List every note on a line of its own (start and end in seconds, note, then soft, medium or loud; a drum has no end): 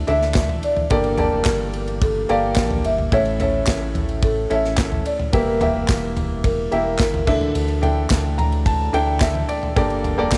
0.00 0.93 D3 medium
0.00 3.08 E3 medium
0.00 0.07 D4 medium
0.00 0.88 D4 medium
0.00 0.07 E4 medium
0.00 0.87 E4 medium
0.00 0.08 A4 medium
0.00 0.14 D5 loud
0.00 0.08 E5 medium
0.07 0.60 D2 loud
0.07 0.74 D4 medium
0.07 0.74 E4 medium
0.07 0.75 A4 medium
0.07 0.75 E5 medium
0.07 0.66 E5 loud
0.07 ride medium
0.21 snare soft
0.34 kick loud
0.34 snare loud
0.34 clap medium
0.34 ride medium
0.34 tambourine medium
0.49 floor tom medium
0.63 0.92 D5 medium
0.63 ride medium
0.77 floor tom medium
0.90 1.30 G1 loud
0.90 1.70 G2 medium
0.90 1.13 A#3 medium
0.90 3.10 A#3 medium
0.90 1.13 G4 medium
0.90 3.10 G4 medium
0.90 1.13 A4 medium
0.90 1.18 A#4 loud
0.90 1.13 D5 medium
0.90 kick loud
0.90 ride medium
1.04 ride soft
1.18 2.07 A#3 medium
1.18 2.08 G4 medium
1.18 2.05 A#4 medium
1.18 2.08 D5 medium
1.18 2.08 A5 medium
1.18 floor tom medium
1.18 ride medium
1.32 1.45 F1 medium
1.45 2.25 G1 loud
1.45 kick loud
1.45 snare loud
1.45 clap loud
1.45 ride medium
1.45 tambourine loud
1.73 ride medium
1.88 ride soft
2.02 2.15 A4 medium
2.02 kick loud
2.02 ride medium
2.29 2.55 G1 loud
2.29 2.96 A#3 medium
2.29 2.96 G4 medium
2.29 2.96 A4 medium
2.29 2.97 D5 medium
2.29 2.87 F5 loud
2.29 ride medium
2.56 2.83 A#1 loud
2.56 kick loud
2.56 snare loud
2.56 clap loud
2.56 ride medium
2.56 tambourine medium
2.71 floor tom medium
2.85 3.11 G1 medium
2.85 3.11 E5 loud
2.85 ride medium
2.98 floor tom medium
3.11 3.64 A1 loud
3.11 3.92 A2 medium
3.11 5.31 A3 medium
3.11 5.31 C#4 medium
3.11 3.35 C#4 medium
3.11 5.31 E4 medium
3.11 3.35 E4 medium
3.11 3.35 A4 medium
3.11 3.39 C#5 loud
3.11 3.35 E5 medium
3.11 kick loud
3.11 ride medium
3.25 ride soft
3.40 4.29 C#4 medium
3.40 4.29 E4 medium
3.40 4.29 A4 medium
3.40 4.27 C#5 loud
3.40 4.30 E5 medium
3.40 floor tom medium
3.40 ride medium
3.67 4.47 A1 loud
3.67 kick loud
3.67 snare loud
3.67 clap loud
3.67 ride medium
3.67 tambourine medium
3.95 floor tom medium
3.95 ride soft
4.09 ride soft
4.23 4.36 A4 medium
4.23 kick loud
4.23 ride medium
4.50 5.02 A1 loud
4.50 5.17 C#4 medium
4.50 5.17 E4 medium
4.50 5.17 A4 medium
4.50 5.18 E5 medium
4.50 5.08 E5 loud
4.50 ride medium
4.64 snare soft
4.77 kick loud
4.77 snare loud
4.77 clap medium
4.77 ride medium
4.77 tambourine medium
4.92 floor tom medium
5.06 5.35 D5 medium
5.06 ride medium
5.20 floor tom medium
5.33 5.72 E1 loud
5.33 6.12 E3 medium
5.33 7.25 G3 medium
5.33 5.55 A#3 medium
5.33 7.25 A#3 medium
5.33 7.25 E4 medium
5.33 5.56 E4 medium
5.33 5.56 G4 medium
5.33 6.41 A#4 loud
5.33 5.56 E5 medium
5.33 kick loud
5.33 ride medium
5.61 6.50 A#3 medium
5.61 6.50 E4 medium
5.61 6.51 G4 medium
5.61 6.51 E5 medium
5.61 floor tom medium
5.61 ride medium
5.76 5.88 F1 medium
5.88 6.68 E1 loud
5.88 kick loud
5.88 snare loud
5.88 clap loud
5.88 ride medium
5.88 tambourine loud
6.17 floor tom medium
6.17 ride medium
6.44 7.00 A#4 medium
6.44 kick loud
6.44 ride medium
6.71 6.98 E1 loud
6.71 7.27 A#3 medium
6.71 7.26 E4 medium
6.71 7.27 G4 medium
6.71 7.26 E5 medium
6.71 ride medium
6.99 7.25 G1 loud
6.99 7.13 A#4 medium
6.99 kick loud
6.99 snare loud
6.99 clap medium
6.99 ride medium
6.99 tambourine medium
7.14 floor tom medium
7.27 7.53 D2 loud
7.27 8.06 D3 medium
7.27 9.73 E3 medium
7.27 9.74 A3 medium
7.27 7.72 D4 medium
7.27 9.74 D4 medium
7.27 7.72 E4 medium
7.27 7.72 A4 medium
7.27 9.17 A4 medium
7.27 7.72 E5 medium
7.27 kick loud
7.27 crash medium
7.41 floor tom medium
7.55 8.07 D2 loud
7.55 ride medium
7.68 ride soft
7.82 8.71 D4 medium
7.82 8.71 E4 medium
7.82 8.71 A4 medium
7.82 8.71 G5 medium
7.82 floor tom medium
7.82 ride medium
8.10 8.89 D2 loud
8.10 kick loud
8.10 snare loud
8.10 clap loud
8.10 ride medium
8.10 tambourine loud
8.38 8.64 A#5 medium
8.38 floor tom medium
8.38 ride medium
8.52 ride soft
8.66 9.04 A5 medium
8.66 kick loud
8.66 ride medium
8.93 9.45 D2 loud
8.93 9.60 D4 medium
8.93 9.60 E4 medium
8.93 9.60 A4 medium
8.93 9.06 G5 loud
8.93 ride medium
9.07 9.20 G5 medium
9.20 9.47 E5 medium
9.20 kick loud
9.20 snare loud
9.20 clap loud
9.20 ride medium
9.20 tambourine medium
9.35 floor tom medium
9.49 9.74 D5 medium
9.49 ride medium
9.63 floor tom medium
9.76 10.15 G1 loud
9.76 10.38 G2 medium
9.76 10.38 G3 medium
9.76 10.09 A#3 medium
9.76 10.38 A#3 medium
9.76 10.10 G4 medium
9.76 10.10 A4 medium
9.76 10.38 A4 medium
9.76 10.10 D5 medium
9.76 kick loud
9.76 ride medium
9.90 ride soft
10.04 floor tom medium
10.04 ride soft
10.18 10.31 F1 loud
10.18 10.38 A#3 medium
10.18 10.38 G4 medium
10.18 10.38 A4 medium
10.18 10.38 D5 loud
10.31 10.38 G1 loud
10.31 kick loud
10.31 snare loud
10.31 clap loud
10.31 ride medium
10.31 tambourine medium